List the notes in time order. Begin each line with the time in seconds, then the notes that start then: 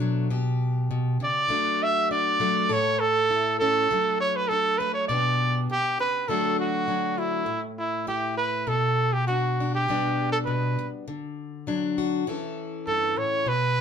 Already playing: B2 D4 A4
0.00 F#3 A3
0.30 B2 G4
0.91 B2
1.20 C#3 D5
1.48 F#3 A3 D4 F#4, muted steel-string acoustic guitar stroke
1.83 E5
2.11 D4 D5
2.40 F#3 A3
2.69 A2 A4 C#5
3.00 A4
3.30 E4
3.59 E3 C#4 A4
3.91 F#3 A3 D4, muted steel-string acoustic guitar stroke
4.20 C#5
4.36 B4
4.48 D4 A4
4.78 F#3 A3 B4
4.94 C#5
5.08 B2 B3 D4 G4 D5, muted steel-string acoustic guitar stroke
5.70 B2 G4
5.99 C#3 B4
6.28 D3 F#3 A3 D4 F#4 A4
6.60 F#4
6.88 F#3 D4
7.18 D4 E4
7.46 A2
7.78 E4
8.07 E4 G4, muted steel-string acoustic guitar stroke
8.37 B4
8.67 B2 A4
9.13 G4
9.27 D4 F#4, muted steel-string acoustic guitar stroke
9.60 D4
9.75 G4
9.88 B2 G3 B3 D4
10.32 A4
10.45 B2 B4
10.79 muted steel-string acoustic guitar stroke
11.08 D3
11.67 F#3 D4
11.98 F#4
12.27 E3 C#4 E4 A4, muted steel-string acoustic guitar stroke
12.87 G2 A4
13.16 A2 C#5
13.46 B2 B4